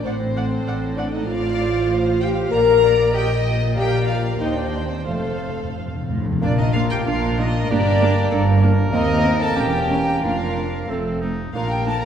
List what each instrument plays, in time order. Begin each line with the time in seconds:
0.03 double bass section A1, cello section A2, french horn section C4, violin section C5, viola section D5 F#5
0.34 violin section A4, viola section D5 F#5
0.66 double bass section A1, cello section A2, viola section D5 F#5
0.95 french horn section D4, violin section D5, viola section D5 F#5
1.11 french horn section D#4, violin section D#5
1.25 double bass section A1, cello section A2, french horn section F4, viola section C5 F5, violin section D5 F5
1.92 violin section C5
2.20 french horn section G4, violin section G5
2.51 double bass section A#1, cello section A#2, french horn section A#4, violin section A#4 A#5, viola section D5
2.84 violin section D5
3.14 french horn section G4, violin section D#5 G5, viola section D#5
3.77 timpani A#2, french horn section G4, violin section A#4 G5, viola section D5 F5
4.08 french horn section F4, violin section F5
4.40 cello section D#2, double bass section D#2, french horn section D#4, violin section C5 D#5, viola section C5 G5
4.55 french horn section D4, violin section D5
4.90 french horn section C4, violin section C5
5.06 double bass section F1, cello section F2, timpani F2, french horn section A3, violin section A4, viola section F5
5.16 timpani F2
5.24 timpani F2
5.31 timpani F2
5.40 timpani F2
5.48 timpani F2
5.56 timpani F2
5.64 timpani F2
5.72 timpani F2, cello section F2
5.79 timpani F2
5.88 timpani F2
5.94 timpani F2
6.03 timpani F2
6.08 timpani F2, cello section A2
6.18 timpani F2
6.25 timpani F2
6.32 timpani F2
6.41 double bass section A#1, cello section A#2, french horn section F3 D4, bassoon A#3, viola section A#3 D4, clarinet D4, violin section D4 D5, oboe F4, trumpet section A#4, flute D5
6.57 violin section D#4 D#5, flute D#5
6.72 viola section A#3 D4, violin section F4 F5, flute F5
6.90 violin section G4 G5, flute G5
7.06 double bass section A#1, cello section A#2, bassoon A#3, viola section A#3 D4, clarinet D4, violin section F4 F5, flute F5
7.37 viola section A#3 D4, violin section D#4 D#5, flute D#5
7.67 double bass section G1, cello section G2, french horn section G3, bassoon A#3, viola section A#3 D4, violin section D4 D5, clarinet D4, oboe G4, flute D5
8.01 viola section A#3 D4
8.30 double bass section G1, cello section G2, viola section A#3 D4, oboe A4
8.62 viola section A#3 D4, oboe A#4
8.92 cello section D#2, double bass section D#2, french horn section G3 C4, bassoon A#3, viola section A#3 C4, clarinet C4, violin section D#4 D#5, trumpet section A#4, flute D#5
9.24 viola section A#3 C4
9.40 violin section A4 A5, flute A5
9.56 double bass section E1, cello section E2, french horn section E3 C#4, bassoon A#3, viola section A#3 C#4, clarinet C#4, oboe G4, violin section G4 G5, trumpet section A#4, flute G5
9.65 violin section A5
9.73 violin section G5
9.82 violin section A5
9.89 viola section A#3 C#4, violin section G5
10.22 double bass section F1, cello section F2, french horn section F3 D4, bassoon A#3, viola section A#3 D4, oboe D4, clarinet D4, violin section F4 F5, trumpet section A#4, flute F5
10.56 viola section A#3 D4
10.88 double bass section F1, cello section F2, french horn section F3 C4, bassoon A3, viola section A3 C4, oboe C4, clarinet C4, trumpet section A4
11.21 viola section A3 C4, oboe D#4
11.53 double bass section A#1, cello section A#2, french horn section F3 D4, bassoon A#3, viola section A#3 D4, clarinet D4, violin section F4 F5, trumpet section A#4, flute F5
11.69 violin section G4 G5, flute G5
11.85 viola section A#3 D4, violin section A4 A5, flute A5
12.01 violin section A#4, flute A#5